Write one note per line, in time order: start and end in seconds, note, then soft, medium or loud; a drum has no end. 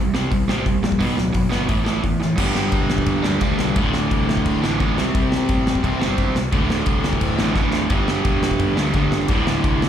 0.00 0.27 C2 medium
0.00 0.12 C3 medium
0.00 0.12 G3 medium
0.14 0.29 C3 medium
0.14 0.30 G3 loud
0.14 0.31 C4 loud
0.14 snare loud
0.31 0.46 C2 medium
0.31 0.46 C3 medium
0.31 0.46 G3 medium
0.31 kick loud
0.31 open hi-hat medium
0.48 0.63 A1 medium
0.48 0.64 C3 medium
0.48 0.64 G3 medium
0.48 0.65 C4 loud
0.48 snare loud
0.65 0.81 C2 medium
0.65 0.81 C3 medium
0.65 0.81 G3 medium
0.65 kick loud
0.65 open hi-hat medium
0.83 0.98 A#1 medium
0.83 0.98 C3 medium
0.83 0.98 G3 medium
0.83 snare loud
0.92 kick medium
0.99 1.15 B1 loud
0.99 1.15 B2 medium
0.99 1.16 F#3 loud
0.99 1.16 B3 loud
0.99 kick loud
0.99 open hi-hat medium
1.16 1.32 D1 medium
1.16 1.31 B2 medium
1.16 1.32 F#3 medium
1.16 snare loud
1.33 1.50 B1 medium
1.33 1.48 B2 medium
1.33 1.49 F#3 medium
1.33 kick loud
1.33 open hi-hat medium
1.49 1.66 G1 medium
1.49 1.67 B2 medium
1.49 1.67 F#3 medium
1.49 1.68 B3 loud
1.49 snare loud
1.67 1.99 A1 medium
1.67 1.83 A2 medium
1.67 1.83 E3 medium
1.67 1.85 A3 loud
1.67 kick loud
1.67 open hi-hat medium
1.84 2.01 A2 medium
1.84 2.01 E3 medium
1.84 2.02 A3 medium
1.84 snare loud
2.02 2.19 E2 medium
2.02 2.19 A2 medium
2.02 2.19 E3 medium
2.02 kick loud
2.02 open hi-hat medium
2.20 2.35 A2 medium
2.20 2.36 E3 medium
2.20 snare medium
2.36 2.52 G1 loud
2.36 3.22 G2 medium
2.36 3.23 D3 medium
2.36 3.21 G3 loud
2.36 kick loud
2.36 crash loud
2.36 crash medium
2.55 2.69 G1 medium
2.55 snare loud
2.72 3.00 E1 loud
2.72 kick loud
2.72 crash medium
2.90 snare loud
2.98 kick medium
3.06 3.21 G1 medium
3.06 kick loud
3.06 crash medium
3.23 3.38 D2 medium
3.23 3.39 G2 medium
3.23 3.41 D3 medium
3.23 3.40 G3 medium
3.23 snare loud
3.40 3.55 D2 medium
3.40 3.74 G2 medium
3.40 3.76 D3 medium
3.40 3.76 G3 loud
3.40 kick loud
3.40 crash medium
3.59 3.73 C2 medium
3.59 snare loud
3.75 3.90 D1 loud
3.75 4.61 D2 medium
3.75 4.62 A2 loud
3.75 4.61 D3 loud
3.75 kick loud
3.75 crash medium
3.94 4.07 D1 medium
3.94 snare loud
4.11 4.39 C2 medium
4.11 kick loud
4.11 crash medium
4.29 snare loud
4.37 kick medium
4.46 4.59 D1 loud
4.46 kick medium
4.46 crash medium
4.62 4.77 A1 medium
4.62 4.77 D2 medium
4.62 4.79 A2 medium
4.62 4.79 D3 medium
4.62 snare loud
4.79 4.94 A1 medium
4.79 4.96 D2 medium
4.79 4.96 A2 medium
4.79 4.97 D3 medium
4.79 kick loud
4.79 crash medium
4.97 5.12 C2 medium
4.97 5.82 C3 medium
4.97 5.83 G3 medium
4.97 5.84 C4 loud
4.97 snare loud
5.15 5.28 C2 loud
5.15 kick loud
5.15 crash medium
5.32 5.46 C2 medium
5.32 snare loud
5.49 5.77 A1 loud
5.49 kick loud
5.49 crash medium
5.67 snare loud
5.75 kick medium
5.83 5.98 C2 loud
5.83 6.00 C3 medium
5.83 6.00 G3 medium
5.83 5.98 C4 medium
5.83 kick loud
5.83 crash medium
6.00 6.15 G1 medium
6.00 6.35 C3 medium
6.00 6.35 G3 medium
6.00 6.34 C4 medium
6.00 snare loud
6.18 6.32 G1 loud
6.18 kick loud
6.18 crash medium
6.35 6.49 C2 medium
6.35 snare loud
6.52 6.67 D1 medium
6.52 7.38 D2 medium
6.52 7.38 A2 loud
6.52 7.37 D3 loud
6.52 kick loud
6.52 crash medium
6.69 6.83 D1 medium
6.69 snare loud
6.86 7.14 C2 loud
6.86 kick loud
6.86 crash medium
7.04 snare loud
7.13 kick medium
7.21 7.35 D1 loud
7.21 kick loud
7.21 crash medium
7.38 7.53 A1 medium
7.38 7.53 D2 medium
7.38 7.55 A2 medium
7.38 7.55 D3 medium
7.38 snare loud
7.55 7.70 A1 loud
7.55 7.89 D2 medium
7.55 7.90 A2 medium
7.55 7.90 D3 loud
7.55 kick loud
7.55 snare medium
7.73 7.87 D1 medium
7.73 snare loud
7.90 8.04 G1 loud
7.90 8.76 G2 medium
7.90 8.77 D3 medium
7.90 8.75 G3 loud
7.90 kick loud
7.90 crash medium
8.08 8.22 G1 medium
8.08 snare loud
8.25 8.53 E1 loud
8.25 kick loud
8.25 crash medium
8.43 snare loud
8.51 kick medium
8.59 8.74 G1 medium
8.59 kick loud
8.59 crash medium
8.76 8.91 D2 medium
8.76 8.93 G2 medium
8.76 8.94 D3 medium
8.76 8.93 G3 medium
8.76 snare loud
8.94 9.08 D2 medium
8.94 9.28 G2 medium
8.94 9.28 D3 medium
8.94 9.29 G3 medium
8.94 kick loud
8.94 crash medium
9.12 9.26 G1 medium
9.12 snare loud
9.28 9.43 D1 loud
9.28 9.89 D2 medium
9.28 9.89 A2 loud
9.28 9.89 D3 loud
9.28 kick loud
9.28 crash medium
9.47 9.61 D1 medium
9.47 snare loud
9.64 9.89 C2 medium
9.64 kick loud
9.64 crash medium
9.82 snare loud